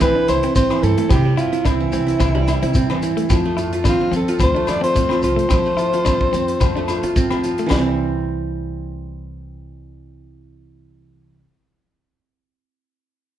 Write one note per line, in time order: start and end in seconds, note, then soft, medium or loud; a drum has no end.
0.00 0.12 A1 medium
0.00 0.69 E3 medium
0.00 1.15 G3 medium
0.00 0.56 C4 medium
0.00 0.11 C4 medium
0.00 0.28 E4 medium
0.00 0.27 B4 loud
0.00 kick medium
0.00 cross-stick medium
0.00 closed hi-hat soft
0.00 low agogo medium
0.00 shekere medium
0.15 0.34 D4 medium
0.28 0.40 C2 medium
0.28 0.43 E4 medium
0.28 0.54 C5 medium
0.28 cross-stick medium
0.28 closed hi-hat medium
0.28 low agogo medium
0.28 shekere medium
0.43 0.62 C4 medium
0.43 0.83 E4 medium
0.43 closed hi-hat medium
0.56 0.67 A1 medium
0.56 1.65 C4 medium
0.56 0.85 C5 medium
0.56 kick medium
0.56 closed hi-hat medium
0.56 shekere medium
0.70 1.15 E3 medium
0.70 0.89 C4 medium
0.70 cross-stick medium
0.70 low agogo medium
0.83 0.94 G2 medium
0.83 1.37 E4 medium
0.83 1.10 A4 medium
0.83 closed hi-hat medium
0.83 shekere medium
0.98 1.06 A3 medium
0.98 closed hi-hat soft
1.09 3.18 C3 medium
1.09 1.31 C3 medium
1.09 1.28 C4 medium
1.09 1.40 G4 medium
1.09 kick medium
1.09 cross-stick medium
1.09 closed hi-hat soft
1.09 low agogo medium
1.09 shekere medium
1.25 2.34 G3 medium
1.37 1.52 E4 medium
1.37 1.56 E4 medium
1.37 1.68 F4 medium
1.37 closed hi-hat soft
1.37 shekere medium
1.53 2.06 E4 medium
1.53 closed hi-hat soft
1.65 1.86 C2 medium
1.65 1.92 C4 medium
1.65 1.83 D4 medium
1.65 3.03 E4 medium
1.65 kick medium
1.65 cross-stick medium
1.65 closed hi-hat soft
1.65 low agogo medium
1.65 shekere medium
1.80 2.19 E3 medium
1.80 shekere soft
1.92 2.14 C2 medium
1.92 2.75 C4 medium
1.92 2.11 C4 medium
1.92 closed hi-hat soft
1.92 shekere medium
2.07 2.47 E4 medium
2.07 closed hi-hat soft
2.20 2.52 C2 medium
2.20 2.90 E3 medium
2.20 2.30 C4 medium
2.20 kick medium
2.20 cross-stick medium
2.20 closed hi-hat soft
2.20 low agogo medium
2.20 shekere medium
2.35 3.35 G3 medium
2.35 2.53 D4 medium
2.48 2.62 E4 medium
2.48 cross-stick medium
2.48 closed hi-hat soft
2.48 low agogo medium
2.48 shekere medium
2.62 2.83 C3 medium
2.62 2.81 C4 medium
2.62 3.02 E4 medium
2.62 closed hi-hat soft
2.74 3.85 C4 medium
2.74 kick medium
2.74 closed hi-hat soft
2.74 shekere medium
2.90 3.35 E3 medium
2.90 3.09 C4 medium
2.90 cross-stick medium
2.90 low agogo medium
3.02 3.36 E4 medium
3.02 closed hi-hat soft
3.02 shekere medium
3.17 3.26 A3 medium
3.17 closed hi-hat soft
3.30 3.86 F2 medium
3.30 4.00 F3 medium
3.30 3.48 C4 medium
3.30 kick medium
3.30 cross-stick medium
3.30 closed hi-hat soft
3.30 low agogo medium
3.30 shekere medium
3.45 4.56 A3 medium
3.57 3.75 E4 medium
3.57 3.72 F4 medium
3.57 closed hi-hat soft
3.57 shekere medium
3.73 4.28 F4 medium
3.73 closed hi-hat soft
3.84 3.96 F3 medium
3.84 4.13 C4 medium
3.84 4.03 D4 medium
3.84 kick medium
3.84 cross-stick medium
3.84 closed hi-hat soft
3.84 low agogo medium
3.84 shekere medium
3.88 4.12 F4 medium
4.01 4.40 F3 medium
4.12 4.23 F3 medium
4.12 4.30 C4 medium
4.12 4.96 C4 medium
4.12 closed hi-hat soft
4.12 shekere medium
4.16 4.40 A4 medium
4.28 4.68 F4 medium
4.28 closed hi-hat soft
4.39 4.52 D2 medium
4.39 5.10 F3 medium
4.39 4.50 C4 medium
4.39 4.71 C5 medium
4.39 kick medium
4.39 cross-stick medium
4.39 closed hi-hat soft
4.39 low agogo medium
4.39 shekere medium
4.55 5.66 A3 medium
4.55 4.73 D4 medium
4.67 4.79 F2 medium
4.67 4.83 F4 medium
4.67 4.83 D5 medium
4.67 cross-stick medium
4.67 closed hi-hat soft
4.67 low agogo medium
4.67 shekere medium
4.81 5.00 C4 medium
4.81 5.23 F4 medium
4.81 5.20 C5 medium
4.81 closed hi-hat medium
4.95 5.07 D2 medium
4.95 6.06 C4 medium
4.95 kick medium
4.95 closed hi-hat soft
4.95 shekere medium
5.09 5.50 F3 medium
5.09 5.28 C4 medium
5.09 cross-stick medium
5.09 low agogo medium
5.22 5.34 C2 medium
5.22 5.79 F4 medium
5.22 7.12 C5 medium
5.22 closed hi-hat soft
5.22 shekere medium
5.36 5.45 A3 medium
5.36 closed hi-hat soft
5.49 5.71 F3 medium
5.49 6.61 F3 medium
5.49 5.68 C4 medium
5.49 kick medium
5.49 cross-stick medium
5.49 closed hi-hat soft
5.49 low agogo medium
5.49 shekere medium
5.65 6.76 A3 medium
5.65 shekere soft
5.77 5.96 E4 medium
5.77 5.93 F4 medium
5.77 closed hi-hat soft
5.77 shekere medium
5.93 6.90 F4 medium
5.93 closed hi-hat soft
5.93 shekere soft
6.05 6.27 F2 medium
6.05 6.34 C4 medium
6.05 6.24 D4 medium
6.05 kick medium
6.05 cross-stick medium
6.05 closed hi-hat soft
6.05 low agogo medium
6.05 shekere medium
6.21 kick medium
6.33 6.54 F2 medium
6.33 6.51 C4 medium
6.33 7.16 C4 medium
6.33 closed hi-hat soft
6.33 shekere medium
6.48 closed hi-hat soft
6.48 shekere soft
6.61 6.93 F2 medium
6.61 7.31 F3 medium
6.61 6.71 C4 medium
6.61 kick medium
6.61 cross-stick medium
6.61 closed hi-hat soft
6.61 low agogo medium
6.61 shekere medium
6.76 8.54 A3 medium
6.76 6.94 D4 medium
6.76 shekere soft
6.88 7.03 F4 medium
6.88 cross-stick medium
6.88 closed hi-hat soft
6.88 low agogo medium
6.88 shekere medium
7.03 7.24 F3 medium
7.03 7.44 F4 medium
7.03 muted clean electric guitar stroke medium
7.03 closed hi-hat soft
7.03 shekere soft
7.16 7.78 C4 medium
7.16 kick medium
7.16 closed hi-hat soft
7.16 shekere medium
7.30 7.76 F3 medium
7.30 7.49 C4 medium
7.30 cross-stick medium
7.30 low agogo medium
7.30 shekere soft
7.44 7.72 F4 medium
7.44 closed hi-hat soft
7.44 shekere medium
7.58 7.67 A3 medium
7.58 closed hi-hat soft
7.58 shekere soft
7.66 11.36 E3 medium
7.66 low agogo medium
7.70 11.38 C2 medium
7.70 11.39 G3 medium
7.70 7.87 C4 medium
7.70 kick medium
7.70 snare medium
7.70 shekere medium
7.78 11.42 C4 medium